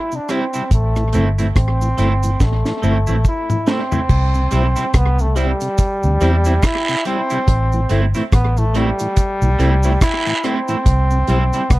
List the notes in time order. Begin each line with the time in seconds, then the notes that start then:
Already playing: E4
0.12 C3 D4, cabasa
0.29 G3 C4 E4, cross-stick, closed hi-hat, cabasa
0.53 C3 G3 C4 E4, closed hi-hat, cabasa
0.71 A1 A3, kick, closed hi-hat, cabasa
0.96 A2 E3, cross-stick, cabasa
1.13 G1 A3 C4 E4, closed hi-hat, cabasa
1.38 A2 E3 A3 C4 E4, closed hi-hat, cabasa
1.56 A1 C4, kick, cross-stick, closed hi-hat, cabasa
1.81 A2 E3, cabasa
1.98 G1 A3 C4 E4, closed hi-hat, cabasa
2.23 A2 E3, closed hi-hat, cabasa
2.40 A1 A3, kick, snare, cabasa
2.65 A2 E3, snare, cabasa
2.82 G1 A3 C4 E4, cabasa
3.07 A1 A2 E3 A3 C4 E4, cabasa
3.25 E4, kick, cabasa
3.50 A2 E3, mid tom, cabasa
3.67 A3 C4 E4, snare, cabasa
3.91 A2 E3 A3 C4 E4, floor tom, cabasa
4.09 C2, kick, crash, cabasa
4.34 C3, cabasa
4.51 B1 G3 C4 E4, closed hi-hat, cabasa
4.76 C3 G3 C4 E4, closed hi-hat, cabasa
4.94 C2 B3, kick, cross-stick, closed hi-hat, cabasa
5.19 C3 A3, cabasa
5.36 G3 C4 E4, closed hi-hat, cabasa
5.61 C3, closed hi-hat, cabasa
5.78 kick, closed hi-hat, cabasa
6.03 D2 C3, cabasa
6.21 E2 G3 C4 E4, closed hi-hat, cabasa
6.45 G3 C4 E4, closed hi-hat, cabasa
6.62 E4, kick, cross-stick, closed hi-hat, cabasa, long guiro
6.89 C3, cabasa
7.05 G3 C4 E4, closed hi-hat, cabasa
7.30 C3 G3 C4 E4, closed hi-hat, cabasa
7.48 A1, kick, closed hi-hat, cabasa
7.72 A2 E3, cabasa
7.89 G1 A3 C4 E4, closed hi-hat, cabasa
8.14 A2 E3 A3 C4 E4, closed hi-hat, cabasa
8.32 A1 B3, kick, cross-stick, closed hi-hat, cabasa
8.57 A2 E3 A3, cabasa
8.74 G3 A3 C4 E4, closed hi-hat, cabasa
8.99 A2 E3, closed hi-hat, cabasa
9.17 kick, closed hi-hat, cabasa
9.42 B1 A2 E3, cabasa
9.59 C2 A3 C4 E4, closed hi-hat, cabasa
9.83 A3 C4 E4, closed hi-hat, cabasa
10.01 E4, kick, cross-stick, closed hi-hat, cabasa, long guiro
10.26 A2 E3, cabasa
10.43 A3 C4 E4, cross-stick, closed hi-hat, cabasa
10.68 A2 E3 A3 C4 E4, closed hi-hat, cabasa
10.86 C2, kick, closed hi-hat, cabasa
11.11 C3, cabasa
11.27 B1 G3 C4 E4, closed hi-hat, cabasa
11.53 C3 G3 C4 E4, closed hi-hat, cabasa
11.70 C2 B3, kick, cross-stick, closed hi-hat, cabasa